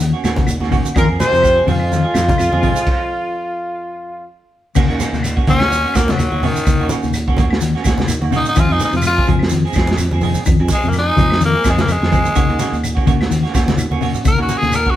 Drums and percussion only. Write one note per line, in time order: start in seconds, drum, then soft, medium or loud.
0.00 closed hi-hat medium
0.00 shekere medium
0.24 snare medium
0.24 closed hi-hat medium
0.24 claves medium
0.24 shekere medium
0.36 kick medium
0.36 snare soft
0.36 closed hi-hat medium
0.36 high conga medium
0.36 shekere soft
0.47 closed hi-hat medium
0.47 claves medium
0.47 shekere medium
0.60 snare soft
0.60 high conga medium
0.72 kick medium
0.72 open hi-hat medium
0.72 high conga medium
0.72 low conga medium
0.72 shekere soft
0.85 closed hi-hat soft
0.85 high conga medium
0.85 shekere medium
0.95 kick loud
0.95 snare soft
0.95 closed hi-hat medium
0.95 claves medium
0.95 shekere medium
1.19 snare medium
1.19 closed hi-hat soft
1.19 high conga medium
1.19 shekere medium
1.32 closed hi-hat medium
1.32 shekere soft
1.42 kick medium
1.42 snare soft
1.42 closed hi-hat medium
1.42 claves medium
1.42 shekere medium
1.68 open hi-hat medium
1.68 high conga medium
1.68 low conga medium
1.68 shekere soft
1.80 claves medium
1.92 snare soft
1.92 closed hi-hat medium
1.92 high conga medium
1.92 shekere medium
2.14 snare medium
2.14 closed hi-hat medium
2.14 claves medium
2.14 shekere loud
2.29 kick medium
2.29 closed hi-hat medium
2.29 high conga loud
2.29 shekere soft
2.38 closed hi-hat medium
2.38 claves medium
2.38 shekere medium
2.53 high conga loud
2.63 kick medium
2.63 open hi-hat medium
2.63 high conga medium
2.63 low conga medium
2.63 shekere soft
2.76 shekere medium
2.87 kick medium
2.87 crash medium
4.75 kick loud
4.75 crash loud
4.75 claves medium
4.75 shekere medium
4.90 closed hi-hat soft
4.99 snare soft
4.99 closed hi-hat soft
4.99 high conga medium
4.99 shekere medium
5.14 snare soft
5.14 closed hi-hat soft
5.14 shekere soft
5.23 snare soft
5.23 closed hi-hat medium
5.23 claves medium
5.23 shekere medium
5.37 kick medium
5.47 kick medium
5.47 closed hi-hat medium
5.47 high conga loud
5.47 low conga medium
5.47 shekere soft
5.59 snare medium
5.59 closed hi-hat soft
5.59 claves medium
5.71 closed hi-hat medium
5.71 shekere medium
5.85 closed hi-hat soft
5.94 kick medium
5.94 snare medium
5.94 closed hi-hat medium
5.94 claves medium
5.94 shekere medium
6.08 snare medium
6.08 closed hi-hat soft
6.08 high conga medium
6.08 shekere soft
6.18 closed hi-hat medium
6.18 claves medium
6.18 shekere loud
6.32 high conga medium
6.43 open hi-hat medium
6.43 high conga medium
6.43 low conga medium
6.43 shekere soft
6.56 high conga medium
6.56 shekere medium
6.65 kick loud
6.65 closed hi-hat medium
6.65 claves medium
6.65 shekere medium
6.89 closed hi-hat soft
6.89 high conga loud
6.89 shekere medium
7.02 closed hi-hat soft
7.02 shekere soft
7.13 closed hi-hat medium
7.13 claves medium
7.13 shekere medium
7.28 kick medium
7.37 kick medium
7.37 closed hi-hat medium
7.37 high conga medium
7.37 low conga loud
7.37 shekere soft
7.50 snare medium
7.50 claves medium
7.61 closed hi-hat medium
7.61 shekere medium
7.76 snare soft
7.84 kick medium
7.84 snare medium
7.84 closed hi-hat medium
7.84 claves medium
7.84 shekere loud
7.98 snare medium
7.98 high conga medium
7.98 shekere soft
8.08 closed hi-hat medium
8.08 claves medium
8.08 shekere loud
8.22 high conga loud
8.32 open hi-hat medium
8.32 high conga medium
8.32 low conga medium
8.32 shekere soft
8.45 low conga medium
8.45 shekere medium
8.56 kick loud
8.56 closed hi-hat medium
8.56 claves medium
8.56 shekere medium
8.71 closed hi-hat soft
8.80 snare soft
8.80 closed hi-hat soft
8.80 high conga loud
8.80 shekere medium
8.93 snare soft
8.93 closed hi-hat soft
8.93 shekere soft
9.02 snare soft
9.02 closed hi-hat medium
9.02 claves medium
9.02 shekere medium
9.18 kick medium
9.26 kick medium
9.26 closed hi-hat medium
9.26 high conga loud
9.26 low conga medium
9.26 shekere soft
9.39 snare medium
9.39 closed hi-hat soft
9.39 claves medium
9.49 closed hi-hat medium
9.49 high conga medium
9.49 shekere medium
9.67 closed hi-hat soft
9.73 kick medium
9.73 claves medium
9.73 shekere loud
9.77 snare medium
9.77 closed hi-hat medium
9.87 closed hi-hat soft
9.87 high conga loud
9.87 shekere soft
9.91 snare medium
9.98 closed hi-hat medium
9.98 claves medium
9.98 shekere loud
10.11 high conga loud
10.21 open hi-hat medium
10.21 high conga medium
10.21 low conga medium
10.21 shekere soft
10.35 high conga medium
10.35 low conga medium
10.35 shekere medium
10.45 kick loud
10.45 closed hi-hat medium
10.45 claves medium
10.45 shekere medium
10.68 kick medium
10.68 closed hi-hat medium
10.68 high conga loud
10.68 shekere medium
10.82 closed hi-hat soft
10.82 shekere soft
10.92 snare soft
10.92 closed hi-hat medium
10.92 claves medium
10.92 shekere medium
11.17 kick medium
11.17 closed hi-hat medium
11.17 high conga medium
11.17 low conga loud
11.17 shekere soft
11.30 snare medium
11.30 claves medium
11.41 closed hi-hat medium
11.41 high conga medium
11.41 shekere medium
11.64 kick medium
11.64 snare medium
11.64 closed hi-hat medium
11.64 claves medium
11.64 shekere loud
11.78 snare medium
11.78 high conga medium
11.78 shekere soft
11.88 closed hi-hat medium
11.88 claves medium
11.88 shekere medium
12.02 snare medium
12.02 high conga medium
12.12 kick medium
12.12 closed hi-hat medium
12.12 high conga medium
12.12 low conga medium
12.12 shekere soft
12.25 high conga medium
12.25 low conga medium
12.25 shekere medium
12.35 kick loud
12.35 closed hi-hat medium
12.35 claves medium
12.35 shekere medium
12.50 closed hi-hat soft
12.59 snare soft
12.59 closed hi-hat soft
12.59 high conga loud
12.59 shekere medium
12.73 closed hi-hat soft
12.73 shekere soft
12.84 closed hi-hat medium
12.84 claves medium
12.84 shekere medium
12.97 kick medium
13.07 kick medium
13.07 closed hi-hat medium
13.07 high conga medium
13.07 low conga medium
13.07 shekere soft
13.21 snare medium
13.21 closed hi-hat soft
13.21 claves medium
13.31 closed hi-hat medium
13.31 high conga medium
13.31 shekere medium
13.45 snare soft
13.45 closed hi-hat soft
13.55 kick medium
13.55 snare medium
13.55 closed hi-hat medium
13.55 claves medium
13.55 shekere loud
13.68 snare medium
13.68 closed hi-hat soft
13.68 high conga loud
13.68 shekere soft
13.78 closed hi-hat medium
13.78 claves medium
13.78 shekere medium
13.92 high conga loud
14.01 open hi-hat medium
14.01 low conga medium
14.01 shekere soft
14.14 low conga medium
14.14 shekere medium
14.25 kick loud
14.25 closed hi-hat medium
14.25 claves medium
14.25 shekere medium
14.49 closed hi-hat soft
14.49 high conga medium
14.49 shekere loud
14.62 snare soft
14.62 closed hi-hat soft
14.62 shekere soft
14.72 snare soft
14.72 closed hi-hat medium
14.72 claves medium
14.72 shekere medium
14.86 kick medium